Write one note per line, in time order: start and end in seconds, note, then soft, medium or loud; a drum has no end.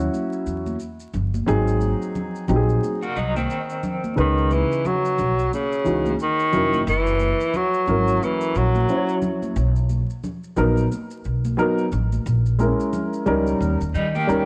0.00 0.74 F#3 medium
0.00 0.74 C#4 medium
0.00 0.75 E4 medium
0.00 0.75 F#4 medium
0.14 high conga soft
0.14 maracas medium
0.33 maracas medium
0.47 0.75 E2 medium
0.47 maracas soft
0.67 high conga medium
0.67 maracas soft
0.80 maracas medium
1.00 maracas soft
1.14 1.42 G1 medium
1.14 low conga medium
1.14 maracas soft
1.34 high conga medium
1.34 maracas soft
1.46 1.93 G#1 loud
1.46 2.43 F#3 medium
1.46 2.43 C4 medium
1.46 2.43 D#4 medium
1.46 2.43 G#4 medium
1.46 maracas medium
1.68 maracas soft
1.81 high conga soft
1.81 maracas soft
2.02 maracas soft
2.16 low conga medium
2.16 maracas medium
2.36 maracas soft
2.48 2.77 A#1 medium
2.48 2.98 F#3 medium
2.48 2.98 C4 medium
2.48 2.99 D#4 medium
2.48 2.57 G4 medium
2.48 low conga medium
2.48 maracas medium
2.56 3.02 G#4 medium
2.69 maracas soft
2.84 high conga soft
2.84 maracas medium
3.03 3.16 A#3 medium
3.03 3.15 F#4 medium
3.03 maracas medium
3.16 3.44 C2 medium
3.16 3.35 F#3 medium
3.16 3.35 D#4 medium
3.16 maracas soft
3.36 4.13 D#3 medium
3.36 4.13 C4 medium
3.36 high conga medium
3.36 maracas soft
3.50 maracas medium
3.70 maracas soft
3.83 low conga medium
3.83 maracas soft
4.04 high conga medium
4.04 maracas soft
4.16 4.62 C#2 loud
4.16 5.12 C#3 medium
4.16 4.54 D#3 medium
4.16 5.12 C#4 medium
4.16 5.13 D#4 medium
4.16 5.13 B4 medium
4.16 maracas medium
4.37 maracas soft
4.51 4.88 E3 medium
4.51 high conga soft
4.51 maracas soft
4.72 maracas soft
4.85 5.53 F#3 loud
4.85 low conga medium
4.85 maracas medium
5.05 maracas medium
5.18 5.47 B1 medium
5.18 low conga medium
5.18 maracas medium
5.39 maracas soft
5.53 6.16 C#3 medium
5.53 high conga soft
5.53 maracas medium
5.72 maracas medium
5.84 6.14 C#2 medium
5.84 6.11 E3 medium
5.84 6.11 C#4 medium
5.84 6.11 D#4 medium
5.84 6.11 F#4 medium
5.84 maracas soft
6.06 high conga medium
6.06 maracas soft
6.19 6.84 D#3 medium
6.19 maracas medium
6.39 maracas soft
6.52 6.81 F1 medium
6.52 6.78 F#3 medium
6.52 6.78 C#4 medium
6.52 6.79 E4 medium
6.52 6.79 A#4 medium
6.52 low conga medium
6.52 maracas soft
6.73 high conga medium
6.73 maracas soft
6.87 7.32 F#1 loud
6.87 7.58 E3 loud
6.87 maracas medium
7.07 maracas soft
7.20 high conga soft
7.20 maracas soft
7.40 maracas soft
7.54 8.25 F#3 medium
7.54 low conga medium
7.54 maracas medium
7.74 maracas soft
7.87 8.16 G#1 loud
7.87 8.83 F#3 medium
7.87 8.83 C#4 medium
7.87 8.84 E4 medium
7.87 8.84 A#4 medium
7.87 low conga medium
7.87 maracas medium
8.08 maracas soft
8.23 8.58 E3 loud
8.23 high conga soft
8.23 maracas medium
8.41 maracas medium
8.55 8.84 A#1 medium
8.55 9.23 F#3 loud
8.55 maracas soft
8.75 high conga medium
8.75 maracas soft
8.88 9.56 F#3 medium
8.88 9.56 C#4 medium
8.88 9.57 E4 medium
8.88 8.97 C5 medium
8.88 maracas medium
8.96 9.60 C#5 medium
9.09 maracas soft
9.22 low conga medium
9.22 maracas soft
9.43 high conga medium
9.43 maracas soft
9.56 10.01 B1 loud
9.56 maracas medium
9.76 maracas soft
9.90 high conga soft
9.90 maracas soft
10.10 maracas soft
10.24 low conga medium
10.24 maracas medium
10.44 maracas soft
10.56 10.86 A#1 medium
10.56 10.82 F#3 medium
10.56 10.83 B3 medium
10.56 10.83 D#4 medium
10.56 10.83 A#4 medium
10.56 low conga medium
10.56 maracas medium
10.77 maracas soft
10.92 high conga soft
10.92 maracas medium
11.11 maracas medium
11.24 11.53 B1 medium
11.24 maracas soft
11.45 high conga medium
11.45 maracas soft
11.57 11.83 F#3 medium
11.57 11.84 B3 medium
11.57 11.84 D#4 medium
11.57 11.84 A#4 loud
11.57 maracas medium
11.78 maracas soft
11.92 12.21 A1 medium
11.92 low conga medium
11.92 maracas soft
12.13 high conga medium
12.13 maracas soft
12.26 12.71 A#1 loud
12.26 maracas medium
12.46 maracas soft
12.59 13.55 G#3 medium
12.59 12.67 C4 medium
12.59 13.55 E4 medium
12.59 13.26 A#4 medium
12.59 high conga soft
12.59 maracas soft
12.66 13.25 C#4 medium
12.80 maracas soft
12.93 low conga medium
12.93 maracas medium
13.13 maracas soft
13.26 13.55 C#2 medium
13.26 13.76 G3 medium
13.26 13.77 C#4 medium
13.26 13.77 D#4 medium
13.26 13.77 A#4 medium
13.26 low conga medium
13.26 maracas medium
13.47 maracas soft
13.61 13.78 D#2 loud
13.61 high conga soft
13.61 maracas medium
13.81 13.92 D#2 medium
13.81 maracas medium
13.94 14.23 D#3 medium
13.94 14.14 G3 medium
13.94 14.14 D#4 medium
13.94 maracas soft
14.15 14.45 A#3 medium
14.15 14.45 G4 medium
14.15 high conga medium
14.15 maracas soft
14.27 14.45 D#2 medium
14.27 14.45 G3 medium
14.27 14.45 C#4 medium
14.27 14.45 D#4 medium
14.27 14.45 A#4 medium
14.27 maracas medium